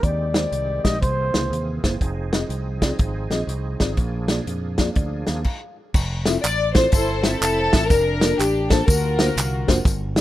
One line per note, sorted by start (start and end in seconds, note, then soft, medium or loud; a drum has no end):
0.00 0.45 D#2 medium
0.00 1.00 D#3 medium
0.00 0.81 D#3 medium
0.00 3.94 C4 medium
0.00 1.00 G4 medium
0.00 0.86 D5 medium
0.00 kick medium
0.00 closed hi-hat medium
0.04 1.02 G#3 medium
0.34 0.44 G#3 medium
0.34 0.44 D#4 medium
0.34 0.45 G4 medium
0.34 0.45 C5 medium
0.34 snare loud
0.34 closed hi-hat medium
0.52 0.79 C2 medium
0.52 closed hi-hat medium
0.84 1.03 A#1 medium
0.84 0.94 G#3 medium
0.84 0.94 D#4 medium
0.84 0.94 G4 medium
0.84 0.95 D5 medium
0.84 1.01 D#5 medium
0.84 kick medium
0.84 snare medium
0.84 closed hi-hat medium
1.02 1.29 C2 medium
1.02 1.80 C3 medium
1.02 2.01 E3 medium
1.02 2.01 A#3 medium
1.02 5.43 G#4 medium
1.02 1.79 C5 medium
1.02 kick loud
1.02 closed hi-hat medium
1.34 1.49 C#2 medium
1.34 1.44 A#3 medium
1.34 1.44 E4 medium
1.34 1.44 G#4 medium
1.34 1.44 C5 medium
1.34 snare loud
1.34 closed hi-hat medium
1.50 1.78 D#2 medium
1.50 closed hi-hat medium
1.84 1.98 F#1 loud
1.84 1.93 A#3 medium
1.84 1.93 E4 medium
1.84 1.93 G#4 medium
1.84 1.93 C5 medium
1.84 kick medium
1.84 snare medium
1.84 closed hi-hat medium
2.01 2.43 F1 loud
2.01 5.43 F3 medium
2.01 3.97 D#4 medium
2.01 kick medium
2.01 closed hi-hat medium
2.33 2.42 C4 medium
2.33 2.42 F4 medium
2.33 2.42 G#4 medium
2.33 2.42 D#5 medium
2.33 snare loud
2.33 closed hi-hat medium
2.49 2.91 C2 medium
2.49 closed hi-hat medium
2.82 2.91 C4 medium
2.82 2.92 F4 medium
2.82 2.92 G#4 medium
2.82 2.92 D5 loud
2.82 kick medium
2.82 snare loud
2.82 closed hi-hat medium
2.99 3.26 G#1 medium
2.99 kick loud
2.99 closed hi-hat medium
3.30 3.45 A#1 medium
3.30 3.41 C4 medium
3.30 3.41 F4 medium
3.30 3.41 G#4 medium
3.30 3.41 D#5 medium
3.30 snare medium
3.30 closed hi-hat medium
3.47 3.75 C2 medium
3.47 closed hi-hat medium
3.80 3.95 G#1 medium
3.80 3.90 C4 medium
3.80 3.90 F4 medium
3.80 3.90 G#4 medium
3.80 3.91 D5 medium
3.80 kick medium
3.80 snare medium
3.80 closed hi-hat medium
3.97 4.39 A#1 loud
3.97 4.75 A#2 medium
3.97 5.45 A#3 medium
3.97 kick medium
3.97 closed hi-hat medium
4.01 5.46 D4 medium
4.28 4.39 A#3 medium
4.28 4.39 F4 medium
4.28 4.40 G#4 medium
4.28 4.40 D5 medium
4.28 snare loud
4.28 closed hi-hat medium
4.47 4.89 F2 medium
4.47 closed hi-hat medium
4.78 4.89 A#3 medium
4.78 4.89 F4 medium
4.78 4.89 G#4 medium
4.78 4.89 D5 medium
4.78 kick medium
4.78 snare loud
4.78 closed hi-hat medium
4.95 5.23 D2 medium
4.95 5.27 D5 medium
4.95 kick loud
4.95 closed hi-hat medium
5.27 5.43 D#2 medium
5.27 5.75 F5 medium
5.27 snare medium
5.27 closed hi-hat medium
5.44 kick medium
5.44 crash medium
5.94 6.36 F1 loud
5.94 kick loud
5.94 crash loud
5.94 tambourine medium
6.25 6.36 C4 medium
6.25 6.36 E4 medium
6.25 6.36 F4 medium
6.25 6.36 A4 medium
6.25 6.36 E5 loud
6.25 snare loud
6.25 closed hi-hat medium
6.25 tambourine medium
6.43 6.85 A1 medium
6.43 6.73 D5 loud
6.43 clap loud
6.43 closed hi-hat medium
6.43 tambourine loud
6.75 6.85 C4 medium
6.75 6.85 E4 medium
6.75 6.85 F4 medium
6.75 6.85 A4 medium
6.75 6.90 C5 loud
6.75 6.86 C5 loud
6.75 kick loud
6.75 snare loud
6.75 closed hi-hat medium
6.75 tambourine soft
6.92 7.34 G1 loud
6.92 7.23 E4 medium
6.92 7.21 A4 medium
6.92 7.22 C5 loud
6.92 kick loud
6.92 closed hi-hat loud
6.92 tambourine loud
7.23 7.86 C4 medium
7.23 7.34 C4 medium
7.23 7.87 E4 medium
7.23 7.34 E4 medium
7.23 7.34 F4 medium
7.23 7.90 A4 loud
7.23 7.34 A4 medium
7.23 7.34 E5 medium
7.23 snare loud
7.23 closed hi-hat medium
7.23 tambourine medium
7.41 7.68 F1 loud
7.41 clap loud
7.41 closed hi-hat loud
7.41 tambourine loud
7.73 7.88 A1 loud
7.73 7.82 C4 medium
7.73 7.83 E4 medium
7.73 7.83 F4 medium
7.73 7.83 A4 medium
7.73 7.83 E5 medium
7.73 kick loud
7.73 snare loud
7.73 closed hi-hat medium
7.73 tambourine medium
7.88 8.32 F1 loud
7.88 8.84 D4 medium
7.88 8.38 A#4 loud
7.88 kick loud
7.88 closed hi-hat medium
7.88 tambourine medium
8.21 8.32 A#3 medium
8.21 8.32 D4 medium
8.21 8.32 F4 medium
8.21 8.32 A4 medium
8.21 8.32 D5 medium
8.21 snare loud
8.21 closed hi-hat medium
8.21 tambourine medium
8.38 8.81 A1 loud
8.38 8.70 G4 medium
8.38 clap medium
8.38 closed hi-hat medium
8.38 tambourine medium
8.70 8.80 A#3 medium
8.70 8.80 D4 medium
8.70 8.80 F4 medium
8.70 8.88 A4 medium
8.70 8.81 A4 medium
8.70 8.81 C5 loud
8.70 kick loud
8.70 snare loud
8.70 closed hi-hat medium
8.70 tambourine medium
8.86 9.29 D2 loud
8.86 9.65 D3 medium
8.86 9.82 F4 medium
8.86 9.82 F#4 medium
8.86 9.68 A#4 medium
8.86 kick loud
8.86 closed hi-hat medium
8.86 tambourine loud
9.19 9.29 A#3 medium
9.19 9.29 D4 medium
9.19 9.29 F4 medium
9.19 9.29 F#4 medium
9.19 9.29 C5 medium
9.19 snare loud
9.19 closed hi-hat medium
9.19 tambourine medium
9.36 9.63 C2 loud
9.36 clap loud
9.36 closed hi-hat medium
9.36 tambourine loud
9.68 9.83 F1 loud
9.68 9.77 A#3 medium
9.68 9.77 D4 medium
9.68 9.78 F4 medium
9.68 9.78 F#4 medium
9.68 9.78 C5 loud
9.68 kick medium
9.68 snare loud
9.68 closed hi-hat medium
9.68 tambourine medium
9.85 10.21 G1 loud
9.85 10.21 G2 medium
9.85 kick loud
9.85 closed hi-hat medium
9.85 tambourine medium
10.16 10.21 A#3 medium
10.16 10.21 D4 medium
10.16 snare loud
10.16 closed hi-hat medium